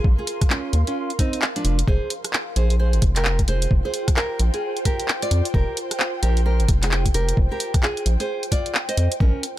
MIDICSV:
0, 0, Header, 1, 5, 480
1, 0, Start_track
1, 0, Tempo, 458015
1, 46, Time_signature, 4, 2, 24, 8
1, 10044, End_track
2, 0, Start_track
2, 0, Title_t, "Ambient pad"
2, 0, Program_c, 0, 92
2, 0, Note_on_c, 0, 70, 73
2, 0, Note_on_c, 0, 77, 85
2, 0, Note_on_c, 0, 84, 81
2, 1724, Note_on_c, 0, 65, 85
2, 1807, Note_on_c, 0, 72, 77
2, 1897, Note_on_c, 0, 79, 75
2, 2926, Note_off_c, 0, 77, 0
2, 3157, Note_off_c, 0, 70, 0
2, 3560, Note_off_c, 0, 84, 0
2, 9646, Note_off_c, 0, 79, 0
2, 9646, Note_on_c, 0, 70, 75
2, 10044, Note_off_c, 0, 65, 0
2, 10044, Note_off_c, 0, 70, 0
2, 10044, Note_off_c, 0, 72, 0
2, 10044, End_track
3, 0, Start_track
3, 0, Title_t, "Nylon-string guitar"
3, 0, Program_c, 1, 24
3, 193, Note_on_c, 1, 65, 72
3, 198, Note_on_c, 1, 68, 86
3, 438, Note_off_c, 1, 65, 0
3, 438, Note_off_c, 1, 68, 0
3, 525, Note_on_c, 1, 61, 78
3, 530, Note_on_c, 1, 65, 91
3, 772, Note_off_c, 1, 61, 0
3, 772, Note_off_c, 1, 65, 0
3, 915, Note_on_c, 1, 61, 74
3, 917, Note_on_c, 1, 65, 96
3, 1159, Note_off_c, 1, 61, 0
3, 1159, Note_off_c, 1, 65, 0
3, 1247, Note_on_c, 1, 60, 75
3, 1250, Note_on_c, 1, 63, 92
3, 1492, Note_off_c, 1, 63, 0
3, 1493, Note_off_c, 1, 60, 0
3, 1634, Note_on_c, 1, 53, 77
3, 1636, Note_on_c, 1, 62, 96
3, 1878, Note_off_c, 1, 53, 0
3, 1878, Note_off_c, 1, 62, 0
3, 1968, Note_on_c, 1, 68, 76
3, 1970, Note_on_c, 1, 72, 98
3, 2213, Note_off_c, 1, 68, 0
3, 2213, Note_off_c, 1, 72, 0
3, 2687, Note_on_c, 1, 68, 83
3, 2689, Note_on_c, 1, 72, 94
3, 2868, Note_off_c, 1, 68, 0
3, 2868, Note_off_c, 1, 72, 0
3, 2928, Note_on_c, 1, 68, 76
3, 2930, Note_on_c, 1, 72, 93
3, 3173, Note_off_c, 1, 68, 0
3, 3173, Note_off_c, 1, 72, 0
3, 3316, Note_on_c, 1, 67, 73
3, 3318, Note_on_c, 1, 70, 86
3, 3559, Note_off_c, 1, 67, 0
3, 3559, Note_off_c, 1, 70, 0
3, 3646, Note_on_c, 1, 68, 81
3, 3652, Note_on_c, 1, 72, 97
3, 3893, Note_off_c, 1, 68, 0
3, 3893, Note_off_c, 1, 72, 0
3, 4033, Note_on_c, 1, 68, 78
3, 4037, Note_on_c, 1, 72, 89
3, 4278, Note_off_c, 1, 68, 0
3, 4278, Note_off_c, 1, 72, 0
3, 4365, Note_on_c, 1, 67, 80
3, 4367, Note_on_c, 1, 70, 97
3, 4612, Note_off_c, 1, 67, 0
3, 4612, Note_off_c, 1, 70, 0
3, 4754, Note_on_c, 1, 65, 77
3, 4757, Note_on_c, 1, 68, 95
3, 4998, Note_off_c, 1, 65, 0
3, 4999, Note_off_c, 1, 68, 0
3, 5087, Note_on_c, 1, 67, 73
3, 5088, Note_on_c, 1, 70, 95
3, 5332, Note_off_c, 1, 67, 0
3, 5332, Note_off_c, 1, 70, 0
3, 5475, Note_on_c, 1, 65, 79
3, 5477, Note_on_c, 1, 74, 100
3, 5719, Note_off_c, 1, 65, 0
3, 5719, Note_off_c, 1, 74, 0
3, 5807, Note_on_c, 1, 67, 75
3, 5809, Note_on_c, 1, 70, 97
3, 6052, Note_off_c, 1, 70, 0
3, 6053, Note_off_c, 1, 67, 0
3, 6523, Note_on_c, 1, 67, 83
3, 6525, Note_on_c, 1, 70, 94
3, 6706, Note_off_c, 1, 67, 0
3, 6706, Note_off_c, 1, 70, 0
3, 6764, Note_on_c, 1, 67, 74
3, 6768, Note_on_c, 1, 70, 95
3, 7011, Note_off_c, 1, 67, 0
3, 7011, Note_off_c, 1, 70, 0
3, 7153, Note_on_c, 1, 65, 75
3, 7159, Note_on_c, 1, 68, 90
3, 7398, Note_off_c, 1, 65, 0
3, 7398, Note_off_c, 1, 68, 0
3, 7485, Note_on_c, 1, 67, 77
3, 7488, Note_on_c, 1, 70, 103
3, 7732, Note_off_c, 1, 67, 0
3, 7732, Note_off_c, 1, 70, 0
3, 7874, Note_on_c, 1, 67, 71
3, 7878, Note_on_c, 1, 70, 93
3, 8118, Note_off_c, 1, 67, 0
3, 8118, Note_off_c, 1, 70, 0
3, 8205, Note_on_c, 1, 65, 73
3, 8207, Note_on_c, 1, 68, 94
3, 8451, Note_off_c, 1, 68, 0
3, 8452, Note_off_c, 1, 65, 0
3, 8592, Note_on_c, 1, 68, 79
3, 8596, Note_on_c, 1, 72, 95
3, 8837, Note_off_c, 1, 68, 0
3, 8837, Note_off_c, 1, 72, 0
3, 8922, Note_on_c, 1, 65, 75
3, 8927, Note_on_c, 1, 74, 91
3, 9171, Note_off_c, 1, 65, 0
3, 9171, Note_off_c, 1, 74, 0
3, 9312, Note_on_c, 1, 72, 78
3, 9316, Note_on_c, 1, 75, 90
3, 9557, Note_off_c, 1, 72, 0
3, 9558, Note_off_c, 1, 75, 0
3, 9645, Note_on_c, 1, 61, 75
3, 9649, Note_on_c, 1, 70, 95
3, 9892, Note_off_c, 1, 61, 0
3, 9892, Note_off_c, 1, 70, 0
3, 10044, End_track
4, 0, Start_track
4, 0, Title_t, "Analog synth bass"
4, 0, Program_c, 2, 38
4, 46, Note_on_c, 2, 34, 102
4, 160, Note_off_c, 2, 34, 0
4, 766, Note_on_c, 2, 39, 85
4, 880, Note_off_c, 2, 39, 0
4, 1725, Note_on_c, 2, 29, 82
4, 1923, Note_off_c, 2, 29, 0
4, 1965, Note_on_c, 2, 29, 99
4, 2080, Note_off_c, 2, 29, 0
4, 2685, Note_on_c, 2, 34, 86
4, 3075, Note_on_c, 2, 32, 107
4, 3090, Note_off_c, 2, 34, 0
4, 3145, Note_off_c, 2, 32, 0
4, 3165, Note_on_c, 2, 29, 93
4, 3612, Note_off_c, 2, 29, 0
4, 3647, Note_on_c, 2, 29, 83
4, 3844, Note_off_c, 2, 29, 0
4, 3886, Note_on_c, 2, 29, 93
4, 4000, Note_off_c, 2, 29, 0
4, 4607, Note_on_c, 2, 34, 87
4, 4721, Note_off_c, 2, 34, 0
4, 5566, Note_on_c, 2, 41, 87
4, 5680, Note_off_c, 2, 41, 0
4, 5806, Note_on_c, 2, 29, 99
4, 5920, Note_off_c, 2, 29, 0
4, 6526, Note_on_c, 2, 34, 85
4, 6914, Note_on_c, 2, 32, 102
4, 6930, Note_off_c, 2, 34, 0
4, 6985, Note_off_c, 2, 32, 0
4, 7005, Note_on_c, 2, 29, 90
4, 7452, Note_off_c, 2, 29, 0
4, 7487, Note_on_c, 2, 29, 81
4, 7684, Note_off_c, 2, 29, 0
4, 7725, Note_on_c, 2, 29, 95
4, 7840, Note_off_c, 2, 29, 0
4, 8446, Note_on_c, 2, 34, 87
4, 8560, Note_off_c, 2, 34, 0
4, 9405, Note_on_c, 2, 41, 86
4, 9520, Note_off_c, 2, 41, 0
4, 9646, Note_on_c, 2, 34, 97
4, 9760, Note_off_c, 2, 34, 0
4, 10044, End_track
5, 0, Start_track
5, 0, Title_t, "Drums"
5, 46, Note_on_c, 9, 36, 125
5, 151, Note_off_c, 9, 36, 0
5, 286, Note_on_c, 9, 46, 108
5, 390, Note_off_c, 9, 46, 0
5, 435, Note_on_c, 9, 36, 119
5, 435, Note_on_c, 9, 37, 49
5, 435, Note_on_c, 9, 42, 64
5, 526, Note_on_c, 9, 39, 124
5, 539, Note_off_c, 9, 36, 0
5, 539, Note_off_c, 9, 37, 0
5, 539, Note_off_c, 9, 42, 0
5, 631, Note_off_c, 9, 39, 0
5, 766, Note_on_c, 9, 46, 99
5, 871, Note_off_c, 9, 46, 0
5, 914, Note_on_c, 9, 46, 60
5, 1019, Note_off_c, 9, 46, 0
5, 1154, Note_on_c, 9, 42, 37
5, 1246, Note_on_c, 9, 36, 64
5, 1247, Note_on_c, 9, 37, 31
5, 1247, Note_on_c, 9, 46, 107
5, 1259, Note_off_c, 9, 42, 0
5, 1350, Note_off_c, 9, 36, 0
5, 1352, Note_off_c, 9, 37, 0
5, 1352, Note_off_c, 9, 46, 0
5, 1395, Note_on_c, 9, 46, 60
5, 1486, Note_on_c, 9, 39, 126
5, 1500, Note_off_c, 9, 46, 0
5, 1591, Note_off_c, 9, 39, 0
5, 1635, Note_on_c, 9, 42, 50
5, 1725, Note_on_c, 9, 46, 101
5, 1740, Note_off_c, 9, 42, 0
5, 1830, Note_off_c, 9, 46, 0
5, 1874, Note_on_c, 9, 42, 65
5, 1965, Note_on_c, 9, 36, 117
5, 1979, Note_off_c, 9, 42, 0
5, 2070, Note_off_c, 9, 36, 0
5, 2204, Note_on_c, 9, 46, 104
5, 2309, Note_off_c, 9, 46, 0
5, 2353, Note_on_c, 9, 37, 51
5, 2353, Note_on_c, 9, 42, 66
5, 2445, Note_on_c, 9, 39, 127
5, 2458, Note_off_c, 9, 37, 0
5, 2458, Note_off_c, 9, 42, 0
5, 2549, Note_off_c, 9, 39, 0
5, 2685, Note_on_c, 9, 46, 101
5, 2790, Note_off_c, 9, 46, 0
5, 2833, Note_on_c, 9, 46, 59
5, 2938, Note_off_c, 9, 46, 0
5, 3073, Note_on_c, 9, 42, 39
5, 3165, Note_on_c, 9, 36, 102
5, 3165, Note_on_c, 9, 37, 30
5, 3165, Note_on_c, 9, 46, 107
5, 3178, Note_off_c, 9, 42, 0
5, 3270, Note_off_c, 9, 36, 0
5, 3270, Note_off_c, 9, 37, 0
5, 3270, Note_off_c, 9, 46, 0
5, 3313, Note_on_c, 9, 39, 59
5, 3313, Note_on_c, 9, 42, 66
5, 3404, Note_off_c, 9, 39, 0
5, 3404, Note_on_c, 9, 39, 113
5, 3418, Note_off_c, 9, 42, 0
5, 3509, Note_off_c, 9, 39, 0
5, 3553, Note_on_c, 9, 42, 54
5, 3554, Note_on_c, 9, 36, 63
5, 3645, Note_on_c, 9, 46, 101
5, 3658, Note_off_c, 9, 42, 0
5, 3659, Note_off_c, 9, 36, 0
5, 3750, Note_off_c, 9, 46, 0
5, 3794, Note_on_c, 9, 42, 63
5, 3886, Note_on_c, 9, 36, 120
5, 3899, Note_off_c, 9, 42, 0
5, 3990, Note_off_c, 9, 36, 0
5, 4125, Note_on_c, 9, 46, 108
5, 4230, Note_off_c, 9, 46, 0
5, 4274, Note_on_c, 9, 36, 101
5, 4275, Note_on_c, 9, 37, 53
5, 4275, Note_on_c, 9, 42, 67
5, 4366, Note_on_c, 9, 39, 126
5, 4379, Note_off_c, 9, 36, 0
5, 4379, Note_off_c, 9, 37, 0
5, 4379, Note_off_c, 9, 42, 0
5, 4470, Note_off_c, 9, 39, 0
5, 4606, Note_on_c, 9, 46, 107
5, 4711, Note_off_c, 9, 46, 0
5, 4755, Note_on_c, 9, 46, 65
5, 4859, Note_off_c, 9, 46, 0
5, 4994, Note_on_c, 9, 42, 39
5, 5086, Note_on_c, 9, 36, 62
5, 5086, Note_on_c, 9, 37, 32
5, 5086, Note_on_c, 9, 46, 110
5, 5099, Note_off_c, 9, 42, 0
5, 5191, Note_off_c, 9, 36, 0
5, 5191, Note_off_c, 9, 37, 0
5, 5191, Note_off_c, 9, 46, 0
5, 5235, Note_on_c, 9, 46, 62
5, 5326, Note_on_c, 9, 39, 117
5, 5340, Note_off_c, 9, 46, 0
5, 5431, Note_off_c, 9, 39, 0
5, 5475, Note_on_c, 9, 42, 52
5, 5566, Note_on_c, 9, 46, 106
5, 5580, Note_off_c, 9, 42, 0
5, 5671, Note_off_c, 9, 46, 0
5, 5715, Note_on_c, 9, 42, 67
5, 5806, Note_on_c, 9, 36, 113
5, 5820, Note_off_c, 9, 42, 0
5, 5911, Note_off_c, 9, 36, 0
5, 6047, Note_on_c, 9, 46, 111
5, 6152, Note_off_c, 9, 46, 0
5, 6195, Note_on_c, 9, 37, 53
5, 6195, Note_on_c, 9, 42, 70
5, 6285, Note_on_c, 9, 39, 119
5, 6300, Note_off_c, 9, 37, 0
5, 6300, Note_off_c, 9, 42, 0
5, 6390, Note_off_c, 9, 39, 0
5, 6525, Note_on_c, 9, 46, 106
5, 6630, Note_off_c, 9, 46, 0
5, 6675, Note_on_c, 9, 46, 66
5, 6780, Note_off_c, 9, 46, 0
5, 6914, Note_on_c, 9, 42, 43
5, 7005, Note_on_c, 9, 36, 107
5, 7006, Note_on_c, 9, 37, 31
5, 7006, Note_on_c, 9, 46, 109
5, 7019, Note_off_c, 9, 42, 0
5, 7110, Note_off_c, 9, 36, 0
5, 7110, Note_off_c, 9, 37, 0
5, 7110, Note_off_c, 9, 46, 0
5, 7154, Note_on_c, 9, 39, 58
5, 7154, Note_on_c, 9, 42, 70
5, 7246, Note_off_c, 9, 39, 0
5, 7246, Note_on_c, 9, 39, 112
5, 7259, Note_off_c, 9, 42, 0
5, 7351, Note_off_c, 9, 39, 0
5, 7394, Note_on_c, 9, 36, 59
5, 7395, Note_on_c, 9, 42, 57
5, 7487, Note_on_c, 9, 46, 111
5, 7499, Note_off_c, 9, 36, 0
5, 7499, Note_off_c, 9, 42, 0
5, 7591, Note_off_c, 9, 46, 0
5, 7635, Note_on_c, 9, 42, 69
5, 7725, Note_on_c, 9, 36, 113
5, 7740, Note_off_c, 9, 42, 0
5, 7830, Note_off_c, 9, 36, 0
5, 7966, Note_on_c, 9, 46, 119
5, 8071, Note_off_c, 9, 46, 0
5, 8114, Note_on_c, 9, 36, 108
5, 8114, Note_on_c, 9, 37, 52
5, 8114, Note_on_c, 9, 42, 68
5, 8205, Note_on_c, 9, 39, 116
5, 8219, Note_off_c, 9, 36, 0
5, 8219, Note_off_c, 9, 37, 0
5, 8219, Note_off_c, 9, 42, 0
5, 8310, Note_off_c, 9, 39, 0
5, 8355, Note_on_c, 9, 42, 41
5, 8446, Note_on_c, 9, 46, 109
5, 8460, Note_off_c, 9, 42, 0
5, 8550, Note_off_c, 9, 46, 0
5, 8595, Note_on_c, 9, 46, 67
5, 8699, Note_off_c, 9, 46, 0
5, 8835, Note_on_c, 9, 42, 39
5, 8925, Note_on_c, 9, 36, 58
5, 8927, Note_on_c, 9, 37, 32
5, 8927, Note_on_c, 9, 46, 116
5, 8940, Note_off_c, 9, 42, 0
5, 9030, Note_off_c, 9, 36, 0
5, 9032, Note_off_c, 9, 37, 0
5, 9032, Note_off_c, 9, 46, 0
5, 9075, Note_on_c, 9, 46, 66
5, 9167, Note_on_c, 9, 39, 114
5, 9180, Note_off_c, 9, 46, 0
5, 9272, Note_off_c, 9, 39, 0
5, 9315, Note_on_c, 9, 42, 53
5, 9405, Note_on_c, 9, 46, 112
5, 9419, Note_off_c, 9, 42, 0
5, 9510, Note_off_c, 9, 46, 0
5, 9554, Note_on_c, 9, 42, 70
5, 9646, Note_on_c, 9, 36, 121
5, 9659, Note_off_c, 9, 42, 0
5, 9750, Note_off_c, 9, 36, 0
5, 9886, Note_on_c, 9, 46, 107
5, 9990, Note_off_c, 9, 46, 0
5, 10044, End_track
0, 0, End_of_file